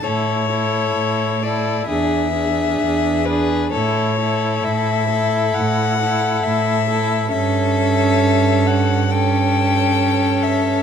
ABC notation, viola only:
X:1
M:4/4
L:1/8
Q:1/4=66
K:Amix
V:1 name="Viola"
E E2 E D D2 D | E E2 E2 E2 E | C4 C4 |]